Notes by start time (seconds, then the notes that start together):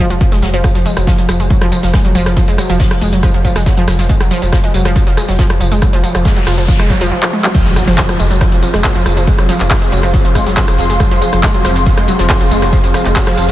0.10 F1 F3, closed hi-hat
0.21 F3, kick, closed hi-hat, shaker
0.32 F1 G#3, snare, closed hi-hat
0.42 F1 F#3, snare, open hi-hat, shaker
0.54 F1 F3, closed hi-hat
0.64 F3, kick, cross-stick, closed hi-hat, tambourine, shaker
0.75 F1 F3, closed hi-hat, tambourine
0.86 G#3, open hi-hat, tambourine, shaker
0.97 F1 F#3, cross-stick, closed hi-hat, tambourine
1.07 F3, kick, snare, closed hi-hat, tambourine, shaker
1.18 F3, closed hi-hat
1.29 F1 F3, cross-stick, open hi-hat, tambourine, shaker
1.40 F1 G#3, closed hi-hat, tambourine
1.50 F#3, kick, closed hi-hat, tambourine, shaker
1.61 F1 F3, cross-stick, closed hi-hat
1.72 F3, open hi-hat, tambourine, shaker
1.83 F1 F3, snare, closed hi-hat, tambourine
1.93 G#3, kick, cross-stick, snare, closed hi-hat, tambourine, shaker
2.05 F1 F#3, closed hi-hat
2.15 F1 F3, open hi-hat, tambourine, shaker
2.26 F1 F3, cross-stick, closed hi-hat, tambourine
2.37 F3, kick, closed hi-hat, tambourine, shaker
2.48 F1 G#3, closed hi-hat, tambourine
2.58 F#3, cross-stick, open hi-hat, tambourine, shaker
2.69 F1 F3, closed hi-hat, tambourine
2.79 kick, snare, closed hi-hat, open hi-hat, tambourine
2.91 F3, cross-stick, closed hi-hat
3.01 F1 G#3, open hi-hat, tambourine, shaker
3.13 F1 F#3, closed hi-hat, tambourine
3.23 F3, kick, cross-stick, closed hi-hat, tambourine, shaker
3.34 F1 F3, closed hi-hat
3.44 F3, kick, open hi-hat, tambourine, shaker
3.55 F1 G#3, cross-stick, snare, closed hi-hat, tambourine
3.66 F#3, kick, snare, closed hi-hat, tambourine, shaker
3.77 F1 F3, closed hi-hat
3.88 F1 F3, cross-stick, snare, open hi-hat, tambourine, shaker
3.98 F1 F3, snare, closed hi-hat, tambourine
4.09 G#3, kick, closed hi-hat, tambourine, shaker
4.21 F1 F#3, cross-stick, closed hi-hat, tambourine
4.31 F3, open hi-hat, tambourine, shaker
4.42 F1 F3, closed hi-hat, tambourine
4.52 F3, kick, cross-stick, snare, closed hi-hat, tambourine, shaker
4.64 G#3, closed hi-hat
4.73 F1 F#3, open hi-hat, tambourine, shaker
4.85 F1 F3, cross-stick, closed hi-hat, tambourine
4.95 F3, kick, closed hi-hat, tambourine, shaker
5.07 F1 F3, closed hi-hat
5.17 G#3, cross-stick, open hi-hat, tambourine, shaker
5.28 F1 F#3, snare, closed hi-hat, tambourine
5.39 F3, kick, snare, closed hi-hat, tambourine, shaker
5.50 F1 F3, cross-stick, closed hi-hat
5.60 F1 F3, open hi-hat, tambourine, shaker
5.72 F1 G#3, closed hi-hat, tambourine
5.81 F#3, kick, cross-stick, closed hi-hat, tambourine, noise sweep, shaker
5.93 F1 F3, closed hi-hat, tambourine
6.04 F3, open hi-hat, tambourine, shaker
6.15 F1 F3, cross-stick, closed hi-hat, tambourine
6.24 G#3, kick, snare, closed hi-hat, open hi-hat, tambourine
6.36 F#3, closed hi-hat
6.46 F1 F3, cross-stick, open hi-hat, tambourine, shaker
6.58 F1 F3, closed hi-hat, tambourine
6.68 F3, kick, closed hi-hat, tambourine, shaker
6.79 F1 G#3, cross-stick, closed hi-hat, tambourine
6.90 F#3, kick, open hi-hat, tambourine
7.01 F1 F3, closed hi-hat, tambourine
7.12 F3
7.23 F3, clap
7.33 G#3
7.44 F#3, clap
7.55 F3 C4, kick, closed hi-hat, crash, tambourine, impact, shaker
7.66 F1 G#3 G#4, closed hi-hat, tambourine
7.75 F#3, cross-stick, open hi-hat, tambourine, shaker
7.87 F1 F3, closed hi-hat, tambourine
7.98 kick, snare, clap, closed hi-hat, tambourine, shaker
8.09 F3, cross-stick, closed hi-hat
8.19 F1 G#3, open hi-hat, tambourine, shaker
8.31 F1 F#3, closed hi-hat, tambourine
8.41 F3, kick, cross-stick, closed hi-hat, tambourine, shaker
8.52 F1 F3, closed hi-hat
8.58 F5
8.63 F3, open hi-hat, tambourine, shaker
8.74 F1 G#3, cross-stick, snare, closed hi-hat, tambourine
8.84 F#3, kick, snare, clap, closed hi-hat, tambourine, shaker
8.94 F1 F3 C6, closed hi-hat, tambourine
9.05 F1 F3, cross-stick, open hi-hat, tambourine, shaker
9.17 F1 F3, closed hi-hat, tambourine
9.27 G#3, kick, closed hi-hat, tambourine, shaker
9.38 F1 F#3, cross-stick, closed hi-hat, tambourine
9.49 F3, open hi-hat, tambourine, shaker
9.60 F1 F3, clap, closed hi-hat, tambourine
9.70 F3, kick, cross-stick, snare, clap, closed hi-hat, open hi-hat
9.82 G#3, closed hi-hat
9.92 F1 F#3, open hi-hat, tambourine, shaker
10.03 F1 F3, cross-stick, closed hi-hat, tambourine
10.13 F3, kick, closed hi-hat, tambourine, shaker
10.25 F1 F3, closed hi-hat
10.35 G#3, kick, cross-stick, open hi-hat, tambourine, shaker
10.46 F1 F#3, snare, closed hi-hat, tambourine
10.56 F3, kick, snare, clap, closed hi-hat, tambourine, shaker
10.68 F1 F3, cross-stick, closed hi-hat, tambourine
10.78 F1 F3, snare, open hi-hat, tambourine, shaker
10.89 F1 G#3, snare, closed hi-hat, tambourine
11.00 F#3, kick, cross-stick, closed hi-hat, tambourine, shaker
11.11 F1 F3, closed hi-hat, tambourine
11.21 F3, open hi-hat, tambourine, shaker
11.33 F1 F3, cross-stick, closed hi-hat, tambourine
11.43 G#3, kick, snare, clap, closed hi-hat, tambourine, shaker
11.54 F#3, closed hi-hat
11.65 F1 F3, cross-stick, open hi-hat, tambourine, shaker
11.76 F1 F3, closed hi-hat, tambourine
11.86 F3, kick, closed hi-hat, tambourine, shaker
11.97 F1 G#3, cross-stick, closed hi-hat
12.08 F#3, open hi-hat, tambourine, shaker
12.19 F1 F3, snare, closed hi-hat, tambourine
12.29 F3, kick, cross-stick, snare, clap, closed hi-hat, tambourine, shaker
12.40 F1 F3 F6, closed hi-hat, tambourine
12.51 F1 G#3, open hi-hat, tambourine, shaker
12.62 F1 F#3, cross-stick, closed hi-hat, tambourine
12.72 F3, kick, closed hi-hat, tambourine, shaker
12.84 F1 F3, closed hi-hat, tambourine
12.94 F3, cross-stick, open hi-hat, tambourine, shaker
13.05 F1 G#3, clap, closed hi-hat, tambourine
13.16 F#3, kick, snare, clap, closed hi-hat, open hi-hat, tambourine
13.27 F3, cross-stick, closed hi-hat
13.37 F1 F3, open hi-hat, tambourine, shaker
13.49 F1 F3, closed hi-hat, tambourine